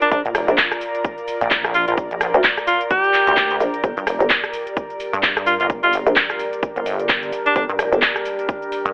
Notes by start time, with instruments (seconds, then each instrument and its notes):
Already playing: analog synth pad F4 A#4 D5 A#5
0.02 alto saxophone D4, closed hi-hat, cabasa
0.12 fm bass A#1, alto saxophone D4, kick, closed hi-hat, cabasa
0.25 wobble bass A#1, closed hi-hat, cabasa
0.35 wobble bass F1, cross-stick, open hi-hat, cabasa
0.48 fm bass A#1, closed hi-hat, cabasa
0.58 kick, clap, closed hi-hat, cabasa
0.72 cross-stick, closed hi-hat, cabasa
0.81 open hi-hat, cabasa
0.95 closed hi-hat, cabasa
1.04 kick, closed hi-hat, cabasa
1.18 closed hi-hat, cabasa
1.28 open hi-hat, cabasa
1.41 wobble bass A#1, closed hi-hat, cabasa
1.51 kick, clap, closed hi-hat, cabasa
1.64 cross-stick, closed hi-hat, cabasa
1.74 alto saxophone F4, open hi-hat, cabasa
1.88 wobble bass A#1, alto saxophone F4, closed hi-hat, cabasa
1.97 kick, closed hi-hat, cabasa
2.11 wobble bass A#1, closed hi-hat, cabasa
2.21 cross-stick, open hi-hat, cabasa
2.34 fm bass D2, closed hi-hat, cabasa
2.44 kick, clap, closed hi-hat, cabasa
2.58 cross-stick, closed hi-hat, cabasa
2.67 alto saxophone F4, open hi-hat, cabasa
2.81 closed hi-hat, cabasa
2.91 alto saxophone G4, kick, closed hi-hat, cabasa
3.04 closed hi-hat, cabasa
3.14 clap, open hi-hat, cabasa
3.27 wobble bass D2, closed hi-hat, cabasa
3.37 kick, clap, closed hi-hat, cabasa
3.51 closed hi-hat, cabasa
3.60 fm bass A#1, open hi-hat, cabasa
3.74 closed hi-hat, cabasa
3.84 fm bass G1, ambient pad G3 D4 A#4, analog synth pad G4, kick, closed hi-hat, cabasa
3.97 wobble bass G2, closed hi-hat, cabasa
4.07 wobble bass F1, cross-stick, open hi-hat, cabasa
4.20 fm bass G1, closed hi-hat, cabasa
4.30 kick, clap, closed hi-hat, cabasa
4.44 cross-stick, closed hi-hat, cabasa
4.53 open hi-hat, cabasa
4.67 closed hi-hat, cabasa
4.77 kick, closed hi-hat, cabasa
4.90 closed hi-hat, cabasa
5.00 open hi-hat, cabasa
5.13 wobble bass G2, closed hi-hat, cabasa
5.23 kick, clap, closed hi-hat, cabasa
5.37 cross-stick, closed hi-hat, cabasa
5.46 alto saxophone F4, open hi-hat, cabasa
5.60 wobble bass G1, alto saxophone F4, closed hi-hat, cabasa
5.70 kick, closed hi-hat, cabasa
5.83 wobble bass G1, alto saxophone F4, closed hi-hat, cabasa
5.93 open hi-hat, cabasa
6.07 fm bass A#1, closed hi-hat, cabasa
6.16 kick, clap, closed hi-hat, cabasa
6.30 cross-stick, closed hi-hat, cabasa
6.39 open hi-hat, cabasa
6.53 closed hi-hat, cabasa
6.63 kick, closed hi-hat, cabasa
6.76 wobble bass G1, closed hi-hat, cabasa
6.86 wobble bass G1, open hi-hat, cabasa
7.00 closed hi-hat, cabasa
7.09 kick, clap, closed hi-hat, cabasa
7.23 closed hi-hat, cabasa
7.32 open hi-hat, cabasa
7.46 alto saxophone D4, closed hi-hat, cabasa
7.56 fm bass G1, alto saxophone D4, kick, closed hi-hat, cabasa
7.69 wobble bass G2, closed hi-hat, cabasa
7.79 wobble bass F1, cross-stick, open hi-hat, cabasa
7.93 fm bass G1, closed hi-hat, cabasa
8.02 kick, clap, closed hi-hat, cabasa
8.16 cross-stick, closed hi-hat, cabasa
8.25 open hi-hat, cabasa
8.39 closed hi-hat, cabasa
8.49 kick, closed hi-hat, cabasa
8.62 closed hi-hat, cabasa
8.72 open hi-hat, cabasa
8.86 wobble bass G2, closed hi-hat, cabasa